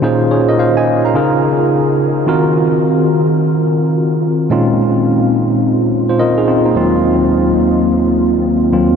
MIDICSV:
0, 0, Header, 1, 2, 480
1, 0, Start_track
1, 0, Tempo, 560748
1, 27, Time_signature, 4, 2, 24, 8
1, 7670, End_track
2, 0, Start_track
2, 0, Title_t, "Tine electric piano"
2, 0, Program_c, 0, 4
2, 0, Control_c, 0, 64, 127
2, 14, Note_on_c, 0, 46, 86
2, 19, Note_on_c, 0, 61, 69
2, 23, Note_on_c, 0, 63, 74
2, 25, Note_on_c, 0, 65, 78
2, 32, Note_on_c, 0, 68, 68
2, 34, Note_on_c, 0, 72, 84
2, 40, Control_c, 0, 64, 0
2, 204, Control_c, 0, 64, 127
2, 259, Note_off_c, 0, 68, 0
2, 265, Note_on_c, 0, 73, 62
2, 266, Note_off_c, 0, 72, 0
2, 269, Note_on_c, 0, 68, 57
2, 409, Note_off_c, 0, 73, 0
2, 411, Note_off_c, 0, 68, 0
2, 416, Note_on_c, 0, 75, 75
2, 420, Note_on_c, 0, 70, 66
2, 502, Note_off_c, 0, 75, 0
2, 504, Note_off_c, 0, 70, 0
2, 507, Note_on_c, 0, 77, 71
2, 511, Note_on_c, 0, 72, 63
2, 650, Note_off_c, 0, 77, 0
2, 652, Note_off_c, 0, 72, 0
2, 660, Note_on_c, 0, 80, 79
2, 665, Note_on_c, 0, 75, 64
2, 887, Note_off_c, 0, 80, 0
2, 890, Note_off_c, 0, 75, 0
2, 898, Note_on_c, 0, 82, 62
2, 904, Note_on_c, 0, 77, 56
2, 961, Note_off_c, 0, 46, 0
2, 964, Note_off_c, 0, 61, 0
2, 966, Note_off_c, 0, 63, 0
2, 967, Note_off_c, 0, 65, 0
2, 977, Note_on_c, 0, 49, 84
2, 981, Note_on_c, 0, 63, 74
2, 986, Note_on_c, 0, 65, 72
2, 991, Note_on_c, 0, 68, 71
2, 997, Note_on_c, 0, 70, 90
2, 1000, Control_c, 0, 64, 0
2, 1126, Note_off_c, 0, 82, 0
2, 1129, Note_off_c, 0, 77, 0
2, 1159, Control_c, 0, 64, 127
2, 1922, Note_off_c, 0, 49, 0
2, 1925, Note_off_c, 0, 63, 0
2, 1927, Note_off_c, 0, 65, 0
2, 1930, Note_off_c, 0, 68, 0
2, 1933, Note_off_c, 0, 70, 0
2, 1938, Note_on_c, 0, 51, 70
2, 1943, Note_on_c, 0, 60, 61
2, 1949, Note_on_c, 0, 65, 66
2, 1953, Note_on_c, 0, 66, 69
2, 1957, Control_c, 0, 64, 0
2, 1958, Note_on_c, 0, 70, 83
2, 2085, Control_c, 0, 64, 127
2, 3828, Note_off_c, 0, 51, 0
2, 3831, Note_off_c, 0, 60, 0
2, 3834, Note_off_c, 0, 65, 0
2, 3836, Note_off_c, 0, 66, 0
2, 3838, Note_off_c, 0, 70, 0
2, 3850, Note_on_c, 0, 46, 76
2, 3855, Note_on_c, 0, 56, 71
2, 3861, Note_on_c, 0, 60, 69
2, 3863, Note_on_c, 0, 61, 68
2, 3867, Note_on_c, 0, 63, 64
2, 3871, Note_on_c, 0, 65, 80
2, 3876, Control_c, 0, 64, 0
2, 4047, Control_c, 0, 64, 127
2, 5040, Note_off_c, 0, 60, 0
2, 5041, Note_off_c, 0, 61, 0
2, 5043, Note_off_c, 0, 63, 0
2, 5045, Note_off_c, 0, 65, 0
2, 5217, Note_on_c, 0, 72, 59
2, 5222, Note_on_c, 0, 65, 50
2, 5299, Note_off_c, 0, 65, 0
2, 5302, Note_off_c, 0, 72, 0
2, 5302, Note_on_c, 0, 75, 67
2, 5303, Note_on_c, 0, 70, 63
2, 5309, Note_on_c, 0, 65, 54
2, 5448, Note_off_c, 0, 70, 0
2, 5451, Note_off_c, 0, 65, 0
2, 5459, Note_on_c, 0, 68, 66
2, 5462, Note_on_c, 0, 63, 58
2, 5543, Note_off_c, 0, 68, 0
2, 5545, Note_off_c, 0, 63, 0
2, 5547, Note_on_c, 0, 65, 66
2, 5552, Note_on_c, 0, 60, 59
2, 5690, Note_off_c, 0, 65, 0
2, 5693, Note_off_c, 0, 60, 0
2, 5697, Note_on_c, 0, 63, 60
2, 5703, Note_on_c, 0, 58, 51
2, 5745, Note_off_c, 0, 46, 0
2, 5747, Note_off_c, 0, 56, 0
2, 5751, Note_off_c, 0, 75, 0
2, 5776, Note_on_c, 0, 39, 73
2, 5777, Note_off_c, 0, 58, 0
2, 5781, Note_on_c, 0, 54, 64
2, 5787, Note_on_c, 0, 58, 68
2, 5792, Note_on_c, 0, 60, 73
2, 5796, Note_on_c, 0, 65, 82
2, 5797, Control_c, 0, 64, 0
2, 5925, Note_off_c, 0, 63, 0
2, 5942, Control_c, 0, 64, 127
2, 7428, Note_off_c, 0, 39, 0
2, 7431, Note_off_c, 0, 54, 0
2, 7433, Note_off_c, 0, 58, 0
2, 7436, Note_off_c, 0, 60, 0
2, 7438, Note_off_c, 0, 65, 0
2, 7465, Note_on_c, 0, 39, 53
2, 7467, Note_on_c, 0, 54, 50
2, 7469, Note_on_c, 0, 58, 51
2, 7472, Note_on_c, 0, 60, 52
2, 7475, Note_on_c, 0, 65, 58
2, 7670, Note_off_c, 0, 39, 0
2, 7670, Note_off_c, 0, 54, 0
2, 7670, Note_off_c, 0, 58, 0
2, 7670, Note_off_c, 0, 60, 0
2, 7670, Note_off_c, 0, 65, 0
2, 7670, End_track
0, 0, End_of_file